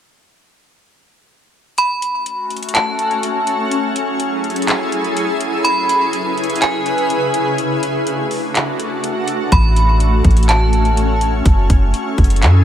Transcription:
1.78 A3 C#4 F#4 B5, closed hi-hat
2.02 closed hi-hat
2.26 closed hi-hat
2.50 closed hi-hat
2.56 closed hi-hat
2.63 closed hi-hat
2.69 closed hi-hat
2.75 A5, clap, closed hi-hat
2.99 closed hi-hat
3.11 closed hi-hat
3.23 closed hi-hat
3.47 closed hi-hat
3.71 F#3 E4 G#4 A4, closed hi-hat
3.96 closed hi-hat
4.20 closed hi-hat
4.44 closed hi-hat
4.50 closed hi-hat
4.56 closed hi-hat
4.62 closed hi-hat
4.68 clap, closed hi-hat
4.92 closed hi-hat
5.04 closed hi-hat
5.17 closed hi-hat
5.41 closed hi-hat
5.64 C#3 C#4 E4 B4 B5, closed hi-hat
5.89 closed hi-hat
6.13 closed hi-hat
6.38 closed hi-hat
6.44 closed hi-hat
6.50 closed hi-hat
6.56 closed hi-hat
6.62 G#5, clap, closed hi-hat
6.86 closed hi-hat
6.98 closed hi-hat
7.10 closed hi-hat
7.34 closed hi-hat
7.58 A3 D4 F#4, closed hi-hat
7.83 closed hi-hat
8.07 closed hi-hat
8.31 open hi-hat
8.55 clap, closed hi-hat
8.80 closed hi-hat
9.04 closed hi-hat
9.28 closed hi-hat
9.52 A1 C#4 B5, kick, closed hi-hat
9.76 closed hi-hat
10.00 closed hi-hat
10.25 A1, kick, closed hi-hat
10.31 closed hi-hat
10.37 closed hi-hat
10.43 closed hi-hat
10.49 A5, clap, closed hi-hat
10.73 closed hi-hat
10.85 closed hi-hat
10.97 closed hi-hat
11.21 closed hi-hat
11.46 F#1 F#3 E4 G#4 A4, kick, closed hi-hat
11.70 F#1, kick, closed hi-hat
11.94 closed hi-hat
12.18 F#1, kick, closed hi-hat
12.24 closed hi-hat
12.30 closed hi-hat
12.36 closed hi-hat
12.42 F#2, clap, closed hi-hat

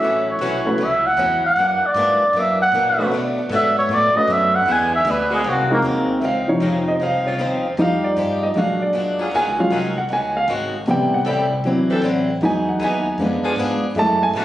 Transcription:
Already playing: A3 C#4 E4 F#4 C#5 E5
0.00 A1 A2 E3 F#3 A3 C#4 F#4
0.05 E4
0.30 C#5
0.39 B1 A2 E3 F#3 A3 C#4 E4 F#4
0.66 A3 C#4 E4 F#4 B4
0.78 C#2 A2 F#3 C#4 E4
0.84 E5
1.07 F#5
1.17 E2 A2 F#3 C#4 E4
1.43 F#5, muted upright bass stroke
1.56 F#2 E3 A#3 D4
1.81 muted upright bass stroke
1.86 D5
1.94 F#2 G#2 E3 A#3 D4
2.20 muted upright bass stroke
2.33 F#2 E3 A#3 D4
2.39 E5
2.62 F#5
2.72 F#2 A#2 E3 A#3 D4
2.98 D3 A3 B3 C#4 D4 F#4 B4
3.11 B2 F#3 A3 D4
3.49 G#2 B2 D3 F#3 A3 B3 D4 F#4 A4
3.55 E5
3.78 C#5
3.89 A2 B2 F#3 A3 D4
3.94 D5
4.15 A3 C#4 D4 F#4 B4 D#5, muted upright bass stroke
4.28 F#2 B2 F#3 A3 D4
4.32 E5
4.55 F#5
4.66 E2 D3 E3 G#3 B3 D4 E4 G#4
4.72 G#5
4.95 E5
5.05 D2 E3 B3 D4 G#4
5.11 B4
5.30 C3 G#3 A#3 F#4
5.34 G#4
5.44 C2 G#2 F#3 A#3 C4
5.49 F#4
5.70 G#3 A#3 C4 D#4 F#4 A#4
5.82 D#2 G#2 F#3 A#3 C4
6.21 C#2 C#3 F3 C4 D#4 E5
6.25 F5
6.48 C3 F3 D#4 C#5
6.60 F2 C#3 F3 C4 D#4
6.88 D#5
7.00 C2 C#3 F3 C4 D#4 F5
7.25 C#3 F3 C4 F4 C#5
7.39 D#2 C#3 F3 C4 D#4
7.77 F2 F3 G3 G#3 D#4 G4
7.82 F5
8.04 D5
8.16 G2 F3 G#3 D#4 G4
8.43 D#5
8.55 A#2 F#3 G#3 D4 F#4 F5
8.82 D5
8.93 F#2 A#2 G#3 D4 F#4
9.19 F#3 C#4 F4 G#4
9.31 D#2 D#3 F#3 G#3 C#4 F4 G#4
9.36 F#4 G#5
9.45 C#2
9.57 A#1 F#3 G#3 C#4 F4 F5
9.70 C2 D#3 F#3 G#3 C#4 F4 F#4 G#4
9.95 F#5, muted upright bass stroke
10.09 C#2 D#3 G#3 C#4 F#4
10.13 G#5
10.37 F5
10.48 G#1 D#3 G#3 C#4 F#4
10.86 A1 A2 C3 G3 B3 C4 E4
10.91 G5
11.14 F#5
11.24 C2 A2 G3 C4 E4 A4
11.29 G5
11.64 D2 D3 E3 F#3 C4 E4
11.89 E3 C4 D4 A4
12.02 A1 D3 F#3 C4 E4
12.41 E2 E3 F#3 G#3 B3 D#4
12.45 G#4 G#5
12.69 F#5
12.80 D#2 E3 B3 D#4 G#4
12.84 G#5
13.18 F2 F3 G#3 B3 D4 G#4
13.43 F3 B3 D4 G#4, muted upright bass stroke
13.56 G#2 F3 B3 D4 G#4
13.95 F#2 E3 G#3 A3 C#4 E4
13.99 A5
14.23 G#5
14.33 F#2 A2 E3 A3 C#4 F#4 A5

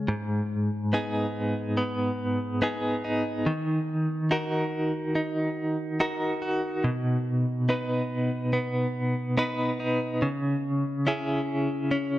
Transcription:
Already playing: G#3 C#4 G#4
0.08 G#2
0.93 B3 D#4 G#4
1.77 B3
2.62 B3 D#4 G#4
3.04 D#4
3.46 D#3
4.31 D#4 F#4 A#4
5.15 D#4
6.00 D#4 F#4 A#4
6.42 F#4
6.84 B2
7.69 B3 D#4 B4
8.53 B3
9.37 B3 D#4 B4
9.80 D#4
10.22 C#3
11.07 C#4 E4 G#4
11.91 C#4

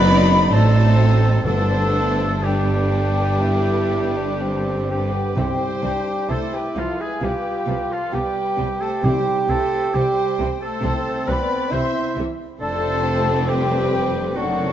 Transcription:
Already playing: F#1 F#2 F#3 B3 C4 D#4 B4 D5 B5
0.50 A1 A2 F#3 A3 C4 D4 D#4 A4 C5 A5
0.96 C4
1.44 G1 G2 D3 A3 B3 D4 A4 C5 A5
2.41 D3 G3 B3 D4 G4 B4 G5
3.41 E4
4.17 D4
4.40 C4
4.88 G3 G4 B4 G5
5.14 B3
5.36 C2 C3 E3 G3 C4 G4 C5 G5
5.82 C2 C3 E3 G3 C4 D4
6.29 C2 C3 E3 G3 A3 C4 E4 A4 C5 A5
6.53 G3 G4 B4 G5
6.75 C2 C3 E3 F3 G3 C4 F4 A4 F5
6.99 G#3 G#4 B4 G#5
7.20 C2 C3 F3 G3 B3 F4 G4 B4 G5
7.67 C2 C3 F3 G3 B3
7.90 F3 F4 A4 F5
8.12 C2 C3 F3 G3 B3 G4 B4 G5
8.57 C2 C3 F3 G3 B3
8.79 A3 A4 C5
8.83 A5
9.03 C2 C3 E3 G3 C4 G4 C5 G5
9.48 C2 C3 E3 G3 A3 C4 A4 C5 A5
9.93 C2 C3 E3 G3 C4 G4 C5 G5
10.38 C2 C3 E3 G3 C4
10.61 A3 A4 C5 A5
10.82 C2 C3 E3 G3 C4
11.26 C2 C3 E3 G3 B3 C4 B4 D5 B5
11.71 C2 C3 E3 G3 C4 E4 C5 E5 C6
12.16 C2 C3 E3 G3 C4
12.60 F1 F2 D3 A3 C4 D4 A4 C5 A5
13.03 C4
13.47 G3 C4 G4 B4 G5
14.30 G5
14.35 F#1 F#2 D#3 F#3 A3 C4 D4 F#4 A4 F#5

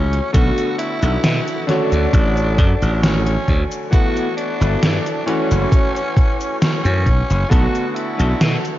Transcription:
Already playing: C#2 E3 A3 C#4 F#4
0.13 closed hi-hat
0.33 B1 D3 A3 B3 D4 F#4 A4, kick, closed hi-hat, cabasa
0.58 closed hi-hat, cabasa
0.79 E4, closed hi-hat
1.02 B1 B3 D4 F#4 A4, closed hi-hat, cabasa
1.24 B2, snare, closed hi-hat, cabasa
1.47 muted clean electric guitar stroke, closed hi-hat, cabasa
1.67 D3 A3 C#4 D4 F#4 A4 C#5, snare, closed hi-hat
1.92 D2, closed hi-hat, cabasa
2.13 A1, kick, closed hi-hat, cabasa
2.37 closed hi-hat, cabasa
2.58 F#2, muted clean electric guitar stroke, kick, closed hi-hat
2.82 A1, closed hi-hat, cabasa
3.02 C#4, snare, closed hi-hat, cabasa
3.25 C#4, closed hi-hat, cabasa
3.48 D2, kick, closed hi-hat
3.72 closed hi-hat, cabasa
3.91 E3 A3 B3 E4 F#4 A4, kick, closed hi-hat, cabasa
4.17 closed hi-hat, cabasa
4.37 D4, closed hi-hat
4.60 G1 B3 E4 F#4 A4, closed hi-hat, cabasa
4.83 G2, snare, closed hi-hat, cabasa
5.05 muted clean electric guitar stroke, closed hi-hat, cabasa
5.26 E3 A3 C#4 E4 F#4 A4, closed hi-hat
5.51 F#1, closed hi-hat, cabasa
5.72 kick, closed hi-hat, cabasa
5.96 closed hi-hat, cabasa
6.16 muted clean electric guitar stroke, kick, closed hi-hat
6.41 closed hi-hat, cabasa
6.61 C#4, snare, closed hi-hat, cabasa
6.84 F#2 C#4, closed hi-hat, cabasa
7.06 B1, kick, closed hi-hat
7.30 F#1, closed hi-hat, cabasa
7.50 B1 D3 A3 B3 D4 F#4 A4, kick, closed hi-hat, cabasa
7.75 closed hi-hat, cabasa
7.90 F#4
7.95 E4, closed hi-hat
8.18 B1 B3 D4 F#4 A4, closed hi-hat, cabasa
8.41 B2, snare, closed hi-hat, cabasa
8.63 muted clean electric guitar stroke, closed hi-hat, cabasa

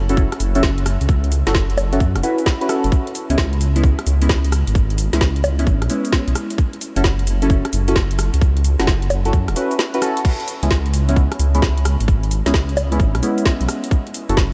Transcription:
Already playing: F#1
0.09 C#4 E4 F#4 A4, closed hi-hat, shaker
0.17 kick, shaker
0.32 cross-stick, closed hi-hat
0.40 F#1, open hi-hat, shaker
0.55 C#4 E4 F#4 A4, closed hi-hat, shaker
0.63 kick, snare, shaker
0.78 closed hi-hat
0.86 cross-stick, open hi-hat, shaker
1.01 C#2, closed hi-hat, shaker
1.09 kick, shaker
1.24 closed hi-hat
1.32 open hi-hat, shaker
1.47 F#1 C#4 E4 F#4 A4, snare, closed hi-hat, shaker
1.55 kick, snare, shaker
1.70 closed hi-hat
1.78 open hi-hat, high bongo, shaker
1.92 C#4 E4 F#4 A4, closed hi-hat, shaker
2.00 F#2, kick, shaker
2.15 E1, cross-stick, closed hi-hat
2.23 C#4 E4 F#4 B4, open hi-hat, shaker
2.38 open hi-hat, shaker
2.46 kick, snare, shaker
2.61 C#4 E4 F#4 B4, closed hi-hat
2.69 C#4 E4 F#4 A4, cross-stick, open hi-hat, shaker
2.84 F#1, closed hi-hat, shaker
2.92 kick, shaker
3.07 closed hi-hat
3.15 open hi-hat, shaker
3.30 C#2 G#3 B3 C#4 E4, closed hi-hat, shaker
3.38 kick, snare, shaker
3.53 closed hi-hat
3.61 open hi-hat, shaker
3.76 G#3 B3 C#4 E4, closed hi-hat, shaker
3.84 kick, shaker
3.99 cross-stick, closed hi-hat
4.07 C#2, open hi-hat, shaker
4.21 G#3 B3 C#4 E4, closed hi-hat, shaker
4.29 kick, snare, shaker
4.44 closed hi-hat
4.52 cross-stick, open hi-hat, shaker
4.67 G#1, closed hi-hat, shaker
4.75 kick, shaker
4.90 closed hi-hat
4.98 open hi-hat, shaker
5.13 C#2 G#3 B3 C#4 E4, snare, closed hi-hat, shaker
5.21 kick, snare, shaker
5.36 closed hi-hat
5.44 open hi-hat, high bongo, shaker
5.59 G#3 B3 C#4 E4, closed hi-hat, shaker
5.67 G#1, kick, shaker
5.82 B1, cross-stick, closed hi-hat
5.90 G#3 B3 C#4 E4, open hi-hat, shaker
6.05 open hi-hat, shaker
6.12 kick, snare, shaker
6.28 B1, closed hi-hat
6.35 cross-stick, open hi-hat, shaker
6.50 closed hi-hat, shaker
6.58 kick, shaker
6.73 closed hi-hat
6.81 open hi-hat, shaker
6.96 F#1 C#4 E4 F#4 A4, closed hi-hat, shaker
7.04 kick, snare, shaker
7.19 closed hi-hat
7.27 open hi-hat, shaker
7.42 C#4 E4 F#4 A4, closed hi-hat, shaker
7.50 kick, shaker
7.65 cross-stick, closed hi-hat
7.73 F#1, open hi-hat, shaker
7.88 C#4 E4 F#4 A4, closed hi-hat, shaker
7.96 kick, snare, shaker
8.11 closed hi-hat
8.19 cross-stick, open hi-hat, shaker
8.34 C#2, closed hi-hat, shaker
8.41 kick, shaker
8.57 closed hi-hat
8.64 open hi-hat, shaker
8.79 F#1 C#4 E4 F#4 A4, snare, closed hi-hat, shaker
8.87 kick, snare, shaker
9.02 closed hi-hat
9.10 open hi-hat, high bongo, shaker
9.25 C#4 E4 F#4 A4, closed hi-hat, shaker
9.33 F#2, kick, shaker
9.48 E1, cross-stick, closed hi-hat
9.56 C#4 E4 F#4 B4, open hi-hat, shaker
9.71 open hi-hat, shaker
9.79 snare, shaker
9.94 C#4 E4 F#4 B4, closed hi-hat
10.02 C#4 E4 F#4 A4, cross-stick, open hi-hat, shaker
10.17 closed hi-hat, shaker
10.25 kick, crash, shaker
10.40 closed hi-hat
10.48 open hi-hat, shaker
10.63 C#2 G#3 B3 C#4 E4, closed hi-hat, shaker
10.71 kick, snare, shaker
10.86 closed hi-hat
10.94 open hi-hat, shaker
11.09 G#3 B3 C#4 E4, closed hi-hat, shaker
11.16 kick, shaker
11.32 cross-stick, closed hi-hat
11.39 C#2, open hi-hat, shaker
11.54 G#3 B3 C#4 E4, closed hi-hat, shaker
11.62 kick, snare, shaker
11.78 closed hi-hat
11.85 cross-stick, open hi-hat, shaker
12.00 G#1, closed hi-hat, shaker
12.08 kick, shaker
12.23 closed hi-hat
12.31 open hi-hat, shaker
12.46 C#2 G#3 B3 C#4 E4, snare, closed hi-hat, shaker
12.54 kick, snare, shaker
12.69 closed hi-hat
12.77 open hi-hat, high bongo, shaker
12.92 G#3 B3 C#4 E4, closed hi-hat, shaker
13.00 G#1, kick, shaker
13.15 B1, cross-stick, closed hi-hat
13.22 G#3 B3 C#4 E4, open hi-hat, shaker
13.38 open hi-hat, shaker
13.45 kick, snare, shaker
13.61 B1, closed hi-hat
13.69 cross-stick, open hi-hat, shaker
13.84 closed hi-hat, shaker
13.91 kick, shaker
14.07 closed hi-hat
14.14 open hi-hat, shaker
14.29 F#1 C#4 E4 F#4 A4, closed hi-hat, shaker
14.37 kick, snare, shaker

